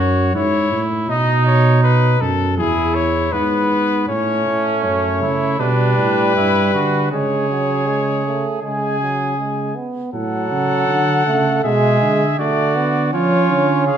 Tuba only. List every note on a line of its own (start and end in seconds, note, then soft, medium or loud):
0.00 0.34 F#2 medium
0.35 0.71 G#2 medium
0.72 1.08 A2 medium
1.09 2.18 B2 medium
2.21 2.59 F#2 medium
2.58 3.32 E2 medium
3.32 4.06 G#2 medium
4.08 4.43 A2 medium
4.46 4.86 A2 medium
4.84 5.24 F#2 medium
5.22 5.59 C#3 medium
5.60 5.97 B2 medium
5.97 6.34 A2 medium
6.35 6.73 G2 medium
6.74 7.11 D3 medium
7.12 8.46 C#3 medium
8.63 9.74 C#3 medium
10.13 10.49 A2 medium
10.51 10.88 C#3 medium
10.88 11.26 D3 medium
11.27 11.63 C#3 medium
11.64 12.01 B2 medium
12.02 12.38 D3 medium
12.39 13.15 D3 medium
13.13 13.52 F3 medium
13.50 13.88 D3 medium
13.87 13.97 C#3 medium